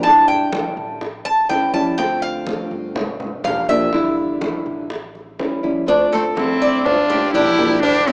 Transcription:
Already playing: upright bass E1
0.03 nylon-string guitar D3 G3 D4 E4, cuban tres A5, high bongo
0.28 cuban tres G5, high bongo, high conga
0.52 nylon-string guitar D3 G3 D4 E4, high bongo, high conga
0.77 upright bass A1, high conga
1.01 muted nylon-string guitar stroke, high bongo, high conga
1.25 upright bass C#2, cuban tres A5, high bongo, high conga
1.49 upright bass D2, nylon-string guitar E3 G3 C#4 E4, cuban tres G5, high bongo, low bongo, high conga
1.73 nylon-string guitar G3 C#4 E4, cuban tres A5, high bongo, high conga
1.98 nylon-string guitar D3 A3 C4 F4, cuban tres G5, high bongo
2.22 cuban tres F5, high conga
2.47 nylon-string guitar D3 A3 C4 F4, high bongo, high conga
2.71 upright bass G1, high conga
2.96 muted nylon-string guitar stroke, high bongo, high conga, low conga
3.20 high conga, low conga
3.44 upright bass E1, nylon-string guitar F3 A#3 D4 G4, cuban tres F5, high bongo, low bongo, high conga
3.69 nylon-string guitar F3 A#3 D4 G4, cuban tres E5, high conga
3.93 nylon-string guitar D3 G3 D4 E4, high bongo, high conga
4.17 high bongo, high conga
4.41 nylon-string guitar D3 G3 D4 E4, high bongo, high conga
4.66 upright bass A1, high conga
4.90 muted nylon-string guitar stroke, high bongo, high conga
5.15 high bongo, high conga
5.39 upright bass D2, nylon-string guitar E3 G3 C#4 E4, high bongo, low bongo, high conga
5.63 nylon-string guitar G3 C#4 E4, high bongo, high conga
5.86 nylon-string guitar D3 A3 C4 F4, cuban tres D4, cowbell, high conga
6.12 cello A3, trumpet C4, cuban tres A4, high conga
6.35 nylon-string guitar D3 A3 C4, cello C4, trumpet E4, cowbell, high conga
6.61 upright bass G1, cuban tres D5, cowbell, high conga
6.84 cello D4, trumpet F4, muted nylon-string guitar stroke, cowbell, high conga, low conga
7.10 cuban tres G4, high conga, low conga
7.32 upright bass E1, nylon-string guitar F3 A#3 D4 G4, cuban tres D4, cello E4, trumpet G4, cowbell, high conga
7.58 nylon-string guitar F3 A#3 D4 G4, cowbell, high conga
7.82 nylon-string guitar D3 G3 D4 E4, cello D4, trumpet G4, cuban tres A#4, cowbell, high conga
8.07 cello C4, trumpet E4, cuban tres G4, cowbell, high conga

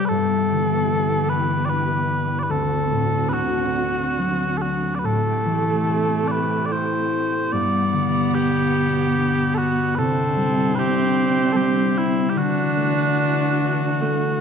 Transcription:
Already playing: harp C3 G3 D#4
0.05 bagpipes A4 B4
0.10 harp G2, string section E3 B3 G4
0.51 harp D3
0.91 harp B3
1.29 bagpipes B4
1.65 harp D4, bagpipes D5
1.70 bagpipes B4
2.39 bagpipes D5
2.43 bagpipes B4
2.49 harp D2, string section D3 C4 F#4, bagpipes A4
2.91 harp A2
3.29 bagpipes B4
3.33 harp D3, bagpipes F#4
4.18 harp F#3
4.58 bagpipes A4
4.62 bagpipes F#4
4.95 bagpipes D5
4.99 bagpipes B4
5.04 harp A2, string section C3 A3 G4, viola A3, bagpipes A4
5.45 harp E3
5.89 harp C4
6.28 bagpipes B4 D5
6.66 bagpipes D5
6.71 harp E4, bagpipes C5
7.52 harp G2, string section B2 G3 F#5, viola B3, bagpipes D5
7.93 harp D3
8.35 harp B3, bagpipes G4
9.18 harp D4
9.55 bagpipes F#4 A4
9.95 harp C3, string section D3 C4 E4, viola C4, bagpipes A4 B4
10.37 harp G3
10.75 harp C3, bagpipes G4 B4
11.53 harp G3, bagpipes G4 A4
11.98 bagpipes E4
12.28 viola E4, bagpipes G4
12.35 harp D3, string section E3 D4 F#4, viola D4, bagpipes F#4
12.77 harp A3
13.18 harp D4
14.01 viola A3, harp A3

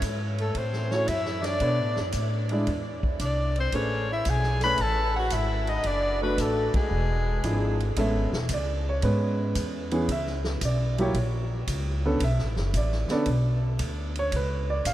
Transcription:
0.02 upright bass G#2, kick, hi-hat pedal, ride
0.38 tenor saxophone A3, soprano saxophone A4, ride
0.55 upright bass A2, tenor saxophone C4, soprano saxophone C5, kick, ride
0.73 snare
0.89 grand piano A3 E4 F#4, tenor saxophone C#4, soprano saxophone C#5, snare
0.94 grand piano C#5
1.07 upright bass F#2, tenor saxophone E4, soprano saxophone E5, kick, hi-hat pedal, ride
1.26 snare
1.42 tenor saxophone D4, snare, ride
1.46 soprano saxophone D5
1.60 upright bass B2, grand piano B3 D4 A4 C#5, kick, ride
1.79 upright bass A2
1.96 upright bass F#2, snare
2.12 upright bass A2, kick, hi-hat pedal, ride
2.49 grand piano G#3 D4 E4 D5, ride
2.67 upright bass E2, kick, ride
3.03 kick
3.19 upright bass C2, tenor saxophone D4, kick, hi-hat pedal, ride
3.25 soprano saxophone D5
3.56 tenor saxophone C4, ride
3.60 soprano saxophone C5
3.72 upright bass A1, grand piano A3 C#4 G#4 B4, tenor saxophone C#4, soprano saxophone C#5, kick, ride
4.12 tenor saxophone E4, soprano saxophone E5
4.25 upright bass B1, kick, hi-hat pedal, ride
4.29 tenor saxophone G#4, soprano saxophone G#5
4.43 snare
4.60 grand piano A3, tenor saxophone B4, soprano saxophone B5, snare, ride
4.64 grand piano C#4 G#4 C#5
4.78 upright bass A1, soprano saxophone A5, kick, ride
4.83 tenor saxophone A4
5.16 tenor saxophone F#4, soprano saxophone F#5
5.30 upright bass G#1, soprano saxophone E5, kick, hi-hat pedal, ride
5.36 tenor saxophone E4
5.67 tenor saxophone D#4, soprano saxophone D#5, ride
5.83 upright bass F#1, tenor saxophone D4, soprano saxophone D5, kick, ride
6.22 grand piano A3 D4 F#4 B4, tenor saxophone B3, soprano saxophone B4
6.38 upright bass A1, tenor saxophone A3, soprano saxophone A4, kick, hi-hat pedal, ride
6.74 tenor saxophone G#3, soprano saxophone G#4, kick, ride
6.91 upright bass E1
7.44 upright bass G#1, grand piano F3 D4 E4 G#4, kick, hi-hat pedal, ride
7.80 ride
7.96 upright bass A1, grand piano G#3 B3 C#4 A4 E5, kick, ride
8.14 upright bass G#1
8.32 upright bass E1, snare
8.49 upright bass C#2, kick, hi-hat pedal, ride
8.54 grand piano D5
8.89 grand piano C#5
9.02 upright bass G#2, grand piano G#3 B3 C#4 B4, kick, ride
9.55 upright bass E2, kick, hi-hat pedal, ride
9.91 grand piano E3 B3 C#4 G#4, ride
10.08 upright bass C#2, grand piano E5, kick, ride
10.27 snare
10.44 snare
10.61 upright bass B1, grand piano D5, kick, hi-hat pedal, ride
10.98 grand piano F#3 A#3 E4 G4 C#5, ride
11.14 upright bass A#1, kick, ride
11.67 upright bass C#2, kick, hi-hat pedal, ride
12.05 grand piano D3 B3 C#4 A4
12.20 upright bass B1, grand piano E5, kick, ride
12.39 upright bass A1, snare
12.57 upright bass F#1, snare
12.74 upright bass A1, grand piano D5, kick, hi-hat pedal, ride
12.92 snare
13.08 grand piano D3 B3 C#4 D5, muted upright bass stroke, snare, ride
13.12 grand piano A4
13.26 upright bass B1, kick, ride
13.79 upright bass D2, kick, hi-hat pedal, ride
14.15 grand piano C#5, ride
14.32 upright bass C#2, kick, ride
14.36 grand piano B4
14.70 grand piano D5
14.85 upright bass A1, grand piano F5, kick, hi-hat pedal, ride

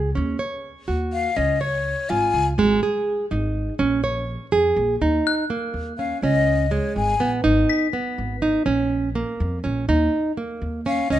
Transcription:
Already playing: upright bass C#2
0.15 upright bass D#2, nylon-string guitar C#4
0.39 nylon-string guitar C#5
0.88 upright bass D#2, nylon-string guitar F#4
1.13 flute F5
1.36 upright bass C#2, nylon-string guitar C#4, flute D#5
1.61 flute C#5, nylon-string guitar C#5
2.10 upright bass G#1, nylon-string guitar F4, flute G#5
2.34 upright bass C#2
2.58 upright bass G#1, nylon-string guitar G#3
2.83 nylon-string guitar G#4
3.31 upright bass G#1, nylon-string guitar D#4
3.79 upright bass A#1, nylon-string guitar C#4
4.04 nylon-string guitar C#5
4.52 upright bass F2, nylon-string guitar G#4
4.76 upright bass A#1
5.01 upright bass D#2, nylon-string guitar D#4
5.27 glockenspiel F#6
5.50 nylon-string guitar A#3
5.74 upright bass D#2
5.98 nylon-string guitar C#4, flute F5
6.22 upright bass C#2, nylon-string guitar C#4, flute D#5
6.71 nylon-string guitar G#3, flute C#5
6.96 upright bass G#1, flute G#5
7.20 upright bass A#1, nylon-string guitar B3
7.44 upright bass G#1, nylon-string guitar D#4
7.69 glockenspiel B6
7.93 nylon-string guitar B3
8.18 upright bass G#1
8.42 nylon-string guitar D#4
8.66 upright bass A#1, nylon-string guitar C#4
9.15 nylon-string guitar A#3
9.40 upright bass F2
9.64 upright bass A#1, nylon-string guitar C#4
9.88 upright bass D#2, nylon-string guitar D#4
10.37 nylon-string guitar A#3
10.61 upright bass D#2
10.86 nylon-string guitar C#4, flute F5
11.10 upright bass C#2, nylon-string guitar C#4, flute D#5

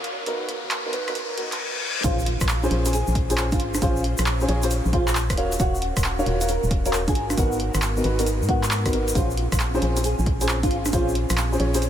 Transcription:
Already playing: fm bass G#1, analog synth pad F#4 A#4, riser
0.04 analog synth pad B3 D#4, open hi-hat
0.26 fm bass G#1, grand piano B3 D#4 F#4 A#4, closed hi-hat
0.49 cross-stick, open hi-hat
0.63 fm bass G#1
0.71 clap, closed hi-hat
0.86 grand piano B3 D#4 F#4 A#4
0.93 fm bass G#1, grand piano B3 D#4 F#4 B4, open hi-hat
1.08 grand piano B3 D#4 F#4 A#4, cross-stick, closed hi-hat
1.15 closed hi-hat, reverse cymbal
1.30 fm bass D#1
1.38 grand piano B3 D#4 F#4 A#4, open hi-hat
1.52 clap, closed hi-hat
2.04 fm bass A#1, analog synth pad C#4 F4 G#4 C5, grand piano C#4 F4 G#4 C5, nylon-string guitar F4, kick, closed hi-hat, impact, shaker
2.19 shaker
2.26 open hi-hat
2.41 fm bass A#1, kick, cross-stick, closed hi-hat, shaker
2.49 clap, shaker
2.63 grand piano C#4 F4 G#4 C5, high conga, shaker
2.71 fm bass A#1, grand piano C#4 F4 G#4 C5, open hi-hat
2.86 grand piano C#4 F4 G#4 C5, closed hi-hat, shaker
2.93 nylon-string guitar G#4, closed hi-hat, shaker
3.07 fm bass A#1, shaker
3.15 kick, open hi-hat
3.30 grand piano C#4 F4 G#4 C5, nylon-string guitar G#4, closed hi-hat, shaker
3.38 clap, open hi-hat, shaker
3.52 fm bass G#1, nylon-string guitar F4, kick, closed hi-hat, high conga, shaker
3.60 open hi-hat
3.74 cross-stick, closed hi-hat, high conga, shaker
3.81 fm bass A#1, grand piano C#4 F4 G#4 C5, nylon-string guitar F4, kick, closed hi-hat, shaker
3.96 shaker
4.04 open hi-hat
4.18 fm bass A#1, cross-stick, closed hi-hat, shaker
4.26 clap, shaker
4.40 grand piano C#4 F4 G#4 C5, shaker
4.49 fm bass A#1, grand piano C#4 F4 G#4 C#5, open hi-hat
4.63 grand piano C#4 F4 G#4 C5, closed hi-hat, shaker
4.71 closed hi-hat, shaker
4.85 fm bass A#1, shaker
4.93 grand piano C#4 F4 G#4 C5, nylon-string guitar F4, kick, open hi-hat
5.08 clap, open hi-hat, shaker
5.15 clap, shaker
5.30 fm bass D#1, kick, cross-stick, closed hi-hat, shaker
5.37 grand piano F#4 A#4 C#5 F5, analog synth pad F#4 A#4, open hi-hat
5.52 closed hi-hat, shaker
5.60 fm bass D#1, grand piano F#4 A#4 C#5 F5, nylon-string guitar F#4, kick, closed hi-hat, shaker
5.75 shaker
5.82 open hi-hat
5.97 fm bass D#1, kick, cross-stick, closed hi-hat, shaker
6.04 clap
6.19 grand piano F#4 A#4 C#5 F5, high conga, shaker
6.26 fm bass D#1, grand piano F#4 A#4 C#5 F5, open hi-hat
6.41 grand piano F#4 A#4 C#5 F5, closed hi-hat, shaker
6.48 nylon-string guitar A#4, closed hi-hat, shaker
6.63 fm bass D#1, shaker
6.71 kick, open hi-hat
6.86 grand piano F#4 A#4 C#5 F5, nylon-string guitar A#4, closed hi-hat, shaker
6.93 clap, open hi-hat, shaker
7.08 fm bass G#1, nylon-string guitar G#4, kick, closed hi-hat, high conga, shaker
7.15 analog synth pad B3 D#4, open hi-hat
7.30 cross-stick, closed hi-hat, high conga, shaker
7.37 fm bass G#1, grand piano B3 D#4 F#4 A#4, nylon-string guitar F#4, kick, closed hi-hat, shaker
7.52 shaker
7.60 open hi-hat
7.74 fm bass G#1, cross-stick, closed hi-hat, shaker
7.82 clap, shaker
7.97 grand piano B3 D#4 F#4 A#4, shaker
8.04 fm bass G#1, grand piano B3 D#4 F#4 B4, open hi-hat
8.19 grand piano B3 D#4 F#4 A#4, closed hi-hat, shaker
8.26 closed hi-hat, shaker
8.41 fm bass G#2, shaker
8.49 grand piano B3 D#4 F#4 A#4, nylon-string guitar F#4, kick, open hi-hat
8.63 clap, open hi-hat, shaker
8.71 clap, shaker
8.86 fm bass G#1, grand piano B3 D#4 F#4 A#4, kick, cross-stick, closed hi-hat, shaker
8.93 grand piano B3 D#4 F#4 A#4, open hi-hat
9.08 closed hi-hat, shaker
9.15 fm bass A#1, analog synth pad C4 C#4 F4 G#4, grand piano C#4 F4 G#4 C5, nylon-string guitar F4, kick, closed hi-hat, shaker
9.31 shaker
9.37 open hi-hat
9.52 fm bass A#1, kick, cross-stick, closed hi-hat, shaker
9.59 clap, shaker
9.74 grand piano C#4 F4 G#4 C5, high conga, shaker
9.82 fm bass A#1, grand piano C#4 F4 G#4, open hi-hat
9.97 grand piano C#4 F4 G#4 C5, closed hi-hat, shaker
10.04 nylon-string guitar G#4, closed hi-hat, shaker
10.19 fm bass A#1, shaker
10.26 kick, open hi-hat
10.41 grand piano C#4 F4 G#4 C5, nylon-string guitar G#4, closed hi-hat, shaker
10.49 clap, open hi-hat, shaker
10.63 fm bass G#1, nylon-string guitar F4, kick, closed hi-hat, high conga, shaker
10.71 open hi-hat
10.85 cross-stick, closed hi-hat, high conga, shaker
10.93 fm bass A#1, grand piano C#4 F4 G#4 C5, nylon-string guitar F4, kick, closed hi-hat, shaker
11.09 shaker
11.15 open hi-hat
11.30 fm bass A#1, cross-stick, closed hi-hat, shaker
11.37 clap, shaker
11.52 grand piano C#4 F4 G#4 C5, shaker
11.60 fm bass A#1, grand piano C#4 F4 G#4 C#5, open hi-hat
11.74 grand piano C#4 F4 G#4 C5, closed hi-hat, shaker
11.82 closed hi-hat, shaker

